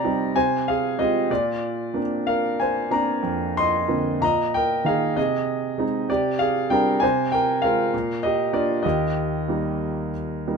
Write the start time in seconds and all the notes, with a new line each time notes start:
Already playing: C3 C5 D5 G5 A#5
0.04 G3 C4 D#4
0.36 C3 C5 G#5
0.68 G#4 F5
0.98 G#3 C4 F4 G4 D#5
1.30 A#2 F4 D5
1.94 A#3 C4 D4
2.27 A#4 F5
2.60 C5 G#5
2.91 A#3 C4 D4 D5 A#5
3.23 F2
3.57 D#5 C6
3.88 D3 A#3 C4
4.21 A#2 D#5 A#5
4.54 A#4 G5
4.84 D#3 A#3 D#4 G#4 F5
5.16 C3 G#4 D#5
5.78 G#3 C4 D#4
6.09 C3 G4 D5
6.39 G#4 F5
6.70 G3 C4 D4 A#4 G5
7.00 C3 C5 G#5
7.32 A#4 G5
7.62 G#3 C4 F4 A#4 F5
7.94 A#2
8.23 G4 D#5
8.53 A#3 D4 F4 D5
8.83 D#2 G4 D#5
9.48 G3 A#3 D#4
10.47 G3 A#3 D#4